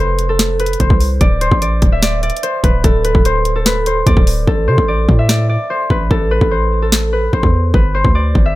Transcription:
Already playing: 808-style bass F1, harp A4 D5 E5
0.00 harp C5
0.19 closed hi-hat
0.29 harp A4
0.39 snare, closed hi-hat
0.60 harp B4, closed hi-hat
0.66 closed hi-hat
0.73 closed hi-hat
0.80 808-style bass F1, harp C5, kick, closed hi-hat
0.90 808-style bass C2, kick
1.00 open hi-hat
1.21 808-style bass D1, harp D5, kick, closed hi-hat
1.41 harp C5, closed hi-hat
1.51 808-style bass A1, kick
1.62 harp D5, closed hi-hat
1.82 808-style bass D1, kick, closed hi-hat
1.92 harp E5
2.03 harp D5, snare, closed hi-hat
2.23 harp D5, closed hi-hat
2.30 closed hi-hat
2.37 closed hi-hat
2.43 harp C5, closed hi-hat
2.64 808-style bass D1, harp B4, kick, closed hi-hat
2.84 808-style bass D1, harp A4, kick, closed hi-hat
3.04 harp B4, closed hi-hat
3.15 808-style bass D1, kick
3.25 harp C5, closed hi-hat
3.45 closed hi-hat
3.56 harp A4
3.66 harp B4, snare, closed hi-hat
3.86 harp C5, closed hi-hat
4.07 808-style bass D2, harp D5, kick, closed hi-hat
4.17 808-style bass D1, kick
4.27 open hi-hat
4.47 808-style bass A1, harp A4, kick
4.68 808-style bass C3, harp C5
4.78 808-style bass A1, kick
4.88 harp D5
5.09 808-style bass A2, kick
5.19 harp E5
5.29 harp D5, snare
5.49 harp D5
5.70 harp C5
5.90 808-style bass A1, harp B4, kick
6.10 808-style bass A1, harp A4, kick
6.31 harp B4
6.41 808-style bass A1, kick
6.51 harp C5
6.82 harp A4
6.92 snare
7.13 harp B4
7.33 808-style bass A1, harp C5, kick
7.43 808-style bass E2, kick
7.74 808-style bass G1, harp B4, kick
7.94 harp C5
8.05 808-style bass D2, kick
8.15 harp D5
8.35 808-style bass G1, kick
8.45 harp E5

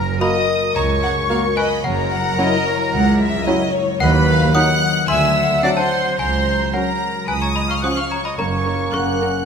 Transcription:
Already playing: double bass section F#1, cello section F#2, harp F#2 C#3 C#4, flute section A#4, oboe A#4, xylophone F#5, violin section A#5
0.02 harp F#4
0.20 viola section A#3 F#4, bassoon A#3, french horn section A#3 F#4, clarinet F#4, harp A#4, flute section D#5, oboe D#5, xylophone B5, violin section D#6
0.39 harp F#4
0.57 harp A#3
0.75 double bass section C#2, cello section C#2, harp F#2, flute section C#5, oboe C#5, xylophone A#5, violin section A#5 C#6
0.94 harp C#3
1.03 violin section F#5
1.12 harp F#4
1.30 bassoon A#3, viola section A#3 F#4, french horn section A#3 F#4, clarinet F#4, harp A#4, violin section F5
1.48 harp F#4
1.55 flute section B4, oboe B4, violin section D#5 B5, xylophone G#5
1.67 harp A#3
1.84 double bass section F#1, cello section F#2, harp F#2, flute section A#4, oboe A#4, violin section C#5 A#5, xylophone F#5
2.03 harp C#3
2.12 violin section F#5
2.21 harp E4
2.38 bassoon F#3, french horn section F#3 E4, viola section C#4 F#4, clarinet E4, harp F#4, violin section D#5
2.57 harp E4
2.68 violin section C#5
2.75 harp F#3
2.93 cello section C#2, double bass section C#2, harp F#2, violin section F#5
3.12 harp C#3
3.21 violin section E5
3.47 bassoon F#3, french horn section F#3 E4, viola section C#4 F#4, clarinet E4, violin section D#5
3.66 harp E4
3.73 violin section C#5
3.84 harp F#3
4.00 double bass section D#2, cello section D#2, harp D#3, flute section B4, oboe B4, violin section D#5 B5, xylophone F#5
4.20 harp F#3
4.28 violin section F5
4.38 harp F#4
4.54 bassoon F#3, french horn section F#3 D#4, clarinet D#4, viola section D#4 F#4, harp D#5, flute section F#5, oboe F#5, violin section F#5 F#6, xylophone D#6
4.73 harp F#4
4.92 harp D#4
5.08 double bass section D2, cello section D2, harp D3, oboe E5, flute section E5, violin section G#5 E6, xylophone C6
5.28 harp F#3
5.37 violin section F#5
5.46 harp F#4
5.63 french horn section F#3 D4, bassoon F#3, viola section C4 F#4, clarinet D4, oboe D5, flute section D5, xylophone F#5, violin section D6
5.77 oboe C5, flute section C5, xylophone A5, violin section C6
5.82 harp F#4
6.00 harp C4
6.18 cello section C#2, double bass section C#2, harp C#3, flute section C5, oboe C5, xylophone G#5, violin section A#5 C6
6.37 harp F#3
6.55 harp F#4
6.73 bassoon F#3, french horn section F#3 C#4, clarinet C#4, viola section C#4 F#4, flute section A#4, oboe A#4, harp C#5, xylophone F#5, violin section A#5
6.91 harp F#4
7.11 harp C#4
7.28 cello section C#2, double bass section C#2, harp C#3, oboe B4, flute section B4, xylophone G#5, violin section B5 D#6
7.41 oboe C#5, flute section C#5, xylophone A#5, violin section C#6
7.47 harp G#3
7.55 oboe D#5, flute section D#5, xylophone B5, violin section D#6
7.65 harp F4, oboe F5
7.70 flute section F5, xylophone C#6, violin section F6
7.82 bassoon F3, french horn section F3 C#4, clarinet C#4, viola section C#4 F4, harp C#5, oboe F#5, flute section F#5, violin section C#6 F#6, xylophone D#6
7.95 oboe F5, flute section F5, xylophone C#6, violin section F6
8.03 harp G#4
8.10 oboe C#5, flute section C#5, xylophone A#5, violin section C#6
8.21 harp F4, oboe D#5
8.25 flute section D#5, xylophone B5, violin section D#6
8.38 double bass section F#1, harp F#2, cello section F#2, bassoon A#3, clarinet C#4, viola section C#4 A#4, oboe C#5, flute section C#5, xylophone A#5, violin section C#6
8.57 harp C#3
8.65 viola section C#4 A#4
8.76 harp C#4
8.93 double bass section F#1, cello section F#2, french horn section A#3 C#4, viola section C#4 A#4, harp A#4, oboe F#5, flute section F#5, xylophone C#6, violin section F#6
9.13 harp F#4
9.20 viola section C#4 A#4
9.31 harp C#4

